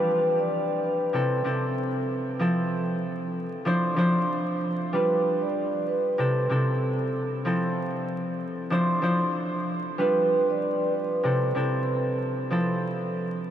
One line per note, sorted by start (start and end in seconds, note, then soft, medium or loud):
0.00 1.19 G3 medium
0.00 2.68 D4 medium
0.00 1.20 F4 medium
0.00 1.30 G4 loud
0.00 0.34 B4 loud
0.00 1.19 B4 medium
0.00 1.57 D5 medium
0.00 1.20 F5 medium
0.00 0.98 G5 medium
0.00 1.01 A5 medium
0.39 0.81 D5 medium
0.83 1.42 B4 medium
1.13 1.43 C3 medium
1.13 1.40 C4 medium
1.13 1.40 E4 medium
1.13 1.40 A4 medium
1.44 2.46 C3 medium
1.44 2.40 C4 medium
1.44 2.40 E4 medium
1.44 1.92 A4 medium
1.44 2.41 A4 medium
2.39 3.64 F3 medium
2.39 5.01 C4 medium
2.39 3.66 E4 medium
2.39 4.61 A4 medium
3.65 3.95 F3 medium
3.65 3.92 D4 medium
3.65 3.92 E4 medium
3.65 3.93 C5 loud
3.96 4.98 F3 medium
3.96 4.93 D4 medium
3.96 5.00 E4 medium
3.96 5.01 C5 loud
4.93 6.24 G3 medium
4.93 7.73 D4 medium
4.93 6.25 F4 medium
4.93 5.39 B4 loud
4.93 6.24 B4 medium
5.42 5.85 D5 medium
5.88 6.47 B4 medium
6.18 6.48 C3 medium
6.18 6.45 C4 medium
6.18 6.45 E4 medium
6.18 6.46 A4 medium
6.50 7.51 C3 medium
6.50 7.45 C4 medium
6.50 7.46 E4 medium
6.50 6.97 A4 medium
6.50 7.47 A4 medium
7.45 8.69 F3 medium
7.45 10.06 C4 medium
7.45 8.71 E4 medium
7.45 9.67 A4 medium
8.70 9.00 F3 medium
8.70 8.97 D4 medium
8.70 8.98 E4 medium
8.70 8.98 C5 loud
9.02 10.03 F3 medium
9.02 9.98 D4 medium
9.02 10.06 E4 medium
9.02 10.06 C5 loud
9.98 11.30 G3 medium
9.98 12.79 D4 medium
9.98 11.31 F4 medium
9.98 10.44 B4 loud
9.98 11.29 B4 medium
10.50 10.92 D5 medium
10.94 11.53 B4 medium
11.23 11.54 C3 medium
11.23 11.50 C4 medium
11.23 11.51 E4 medium
11.23 11.51 A4 medium
11.55 12.56 C3 medium
11.55 12.51 C4 medium
11.55 12.51 E4 medium
11.55 12.02 A4 medium
11.55 12.52 A4 medium
12.50 13.51 F3 medium
12.50 13.51 C4 medium
12.50 13.51 E4 medium
12.50 13.51 A4 medium